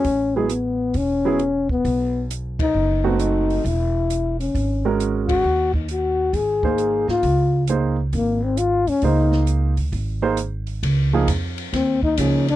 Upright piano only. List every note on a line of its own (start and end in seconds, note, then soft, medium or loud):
0.36 0.49 F#3 medium
0.36 0.49 B3 medium
0.36 0.49 E4 medium
0.36 0.49 G#4 medium
1.25 1.38 F#3 medium
1.25 1.38 B3 medium
1.25 1.38 E4 medium
1.25 1.39 G#4 medium
3.04 3.61 A3 medium
3.04 3.61 C4 medium
3.04 3.61 D#4 medium
3.04 3.61 F#4 medium
4.85 5.41 G#3 medium
4.85 5.41 C#4 medium
4.85 5.41 F#4 medium
4.85 5.41 A#4 medium
6.63 7.20 A#3 medium
6.63 7.20 D#4 medium
6.63 7.21 G#4 medium
6.63 7.21 C5 medium
7.69 7.95 A#3 medium
7.69 7.95 D#4 medium
7.69 7.95 G#4 medium
7.69 7.96 C5 medium
9.04 9.72 A#3 medium
9.04 9.72 D#4 medium
9.04 9.72 G#4 medium
9.04 9.72 C5 medium
10.22 10.36 A#3 medium
10.22 10.36 D#4 medium
10.22 10.36 G#4 medium
10.22 10.36 C5 medium
11.13 11.27 F3 medium
11.13 11.27 A#3 medium
11.13 11.27 D#4 medium
11.13 11.27 G#4 medium
12.19 12.45 F3 medium
12.19 12.46 A#3 soft
12.19 12.46 D#4 soft
12.19 12.46 G#4 medium